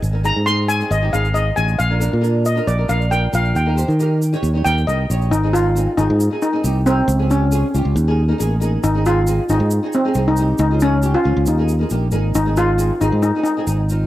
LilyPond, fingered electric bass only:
\new Staff \with { instrumentName = "Fingered electric bass" } { \clef bass \time 4/4 \key aes \major \tempo 4 = 136 aes,,8. aes,4~ aes,16 aes,,8 aes,,4 a,,8 | bes,,8. bes,4~ bes,16 bes,,8 bes,,4 bes,,8 | ees,8. ees4~ ees16 ees,8 ees,8 r8 bes,,8 | aes,,4. aes,,16 aes,8 r8. c,4 |
des,4. des,16 des,16 ees,4 a,,4 | aes,,4. aes,,16 aes,8 r8. c,4 | des,4. des,16 des,16 ees,4 bes,,8 aes,,8 | aes,,4. aes,,16 aes,8 r8. aes,,4 | }